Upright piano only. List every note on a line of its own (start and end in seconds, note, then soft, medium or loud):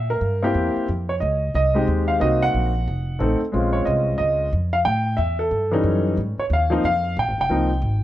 0.10 0.72 A#4 medium
0.43 0.86 A#3 medium
0.43 0.86 C4 medium
0.43 0.86 E4 medium
0.43 0.86 G4 medium
1.09 1.14 C#5 medium
1.20 1.52 D#5 medium
1.55 1.86 D#5 medium
1.74 2.18 G#3 medium
1.74 2.18 C4 soft
1.74 2.18 D#4 medium
1.74 2.19 G4 medium
2.08 2.20 F5 medium
2.20 2.70 A#3 medium
2.20 2.70 C4 medium
2.20 2.71 D#4 medium
2.20 2.71 F#4 medium
2.20 2.43 D#5 loud
2.43 3.37 F#5 loud
3.19 3.38 A3 medium
3.19 3.39 C4 medium
3.19 3.39 D#4 medium
3.19 3.39 A4 medium
3.52 4.45 G#3 medium
3.52 4.45 C4 medium
3.52 4.45 C#4 medium
3.52 4.46 F4 medium
3.73 3.85 C#5 medium
3.85 4.16 D#5 medium
4.18 4.49 D#5 medium
4.73 4.78 F5 medium
4.85 5.19 G5 loud
5.17 5.37 E5 medium
5.39 6.01 A4 medium
5.72 6.15 E3 medium
5.72 6.15 G3 medium
5.72 6.16 C#4 medium
5.72 6.16 D#4 medium
6.40 6.45 C#5 medium
6.53 6.83 F5 medium
6.70 6.82 F3 medium
6.70 6.82 A#3 medium
6.70 6.83 C4 medium
6.70 6.83 D#4 medium
6.85 7.15 F5 loud
7.19 7.40 G5 medium
7.41 8.04 G5 medium
7.50 7.69 F3 medium
7.50 7.69 A#3 medium
7.50 7.69 C4 medium
7.50 7.70 D#4 medium